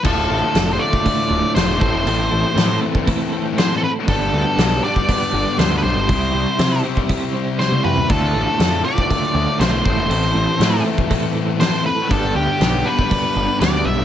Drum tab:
CC |x---------------|----------------|----------------|----------------|
HH |----o---o---o---|o---o---o---o---|o---o---o---o---|o---o---o-------|
SD |----o-------o---|----o-------o---|----o-------o---|----o-------o---|
T1 |----------------|----------------|----------------|-------------o--|
T2 |----------------|----------------|----------------|--------------o-|
FT |----------------|----------------|----------------|---------------o|
BD |o------oo-----o-|-------oo-------|o------oo-------|o------oo-------|

CC |----------------|----------------|----------------|
HH |o---o---o---o---|o---o---o---o---|o---o---o---o---|
SD |----o-------o---|----o-------o---|----o-------o---|
T1 |----------------|----------------|----------------|
T2 |----------------|----------------|----------------|
FT |----------------|----------------|----------------|
BD |o------oo-----o-|-------oo-------|o------oo-------|